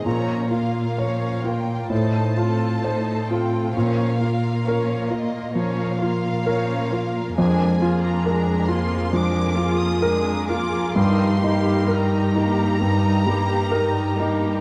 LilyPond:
<<
  \new Staff \with { instrumentName = "Violin section" } { \time 4/4 \key bes \dorian \tempo 4 = 66 bes''8 f''4 g''8 a''4. g''8 | f''4. ees''8 f''2 | \key ees \major aes''8. bes''8. c'''8 d'''8. ees'''8. d'''8 | c'''4 bes''2. | }
  \new Staff \with { instrumentName = "Violin section" } { \time 4/4 \key bes \dorian <bes' des''>8 <f' bes'>8 <bes' des''>8 <f' bes'>8 <a' c''>8 <f' a'>8 <a' c''>8 <f' a'>8 | <bes' des''>8 <f' bes'>8 <bes' des''>8 <f' bes'>8 <bes' des''>8 <f' bes'>8 <bes' des''>8 <f' bes'>8 | \key ees \major <aes' bes'>8 <f' aes'>8 <aes' bes'>8 <f' aes'>8 <aes' bes'>8 <f' aes'>8 <aes' bes'>8 <f' aes'>8 | <g' bes'>8 <ees' g'>8 <g' bes'>8 <ees' g'>8 <g' bes'>8 <ees' g'>8 <g' bes'>8 <ees' g'>8 | }
  \new Staff \with { instrumentName = "Grand piano" } { \time 4/4 \key bes \dorian bes,8 f'8 des''8 f'8 a,8 f'8 c''8 f'8 | bes,8 f'8 bes'8 f'8 f8 f'8 bes'8 f'8 | \key ees \major f,8 f'8 bes'8 f'8 f8 f'8 bes'8 f'8 | g,8 ees'8 bes'8 ees'8 g,8 g8 bes'8 ees'8 | }
  \new Staff \with { instrumentName = "Viola section" } { \time 4/4 \key bes \dorian <f des'>8 bes8 <f des'>8 bes8 <a ees'>8 <c' f'>8 <a ees'>8 <c' f'>8 | <f des'>8 bes8 <f des'>8 bes8 <f des'>8 bes8 <f des'>8 bes8 | \key ees \major <aes d'>8 <bes f'>8 <aes d'>8 <bes f'>8 <aes d'>8 <bes f'>8 <aes d'>8 <bes f'>8 | <g ees'>8 <bes g'>8 <g ees'>8 <bes g'>8 <g ees'>8 <bes g'>8 <g ees'>8 <bes g'>8 | }
  \new Staff \with { instrumentName = "Cello section" } { \clef bass \time 4/4 \key bes \dorian bes,2 a,2 | bes,1 | \key ees \major f,1 | g,1 | }
>>